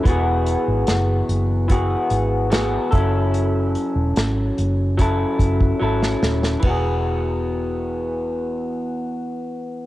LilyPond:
<<
  \new Staff \with { instrumentName = "Clean electric guitar" } { \time 4/4 \key e \major \tempo 4 = 73 <e b fis' gis'>2 <e b fis' gis'>4 <e b fis' gis'>8 <fis cis' e' a'>8~ | <fis cis' e' a'>2 <fis cis' e' a'>4 <fis cis' e' a'>4 | <e b fis' gis'>1 | }
  \new Staff \with { instrumentName = "Fingered electric bass" } { \clef bass \time 4/4 \key e \major e,,8. gis,,16 fis,,8 fis,,4 gis,,4 fis,,8~ | fis,,8. e,,16 gis,,8 fis,,4 fis,,8 gis,,8 dis,,8 | e,,1 | }
  \new DrumStaff \with { instrumentName = "Drums" } \drummode { \time 4/4 <hh bd>8 hh8 <hh sn>8 hh8 <hh bd>8 hh8 <hh sn>8 <hh bd>8 | hh8 hh8 <hh sn>8 hh8 <hh bd>8 <hh bd>16 bd16 r16 sn16 sn16 sn16 | <bd cymr>4 r4 r4 r4 | }
>>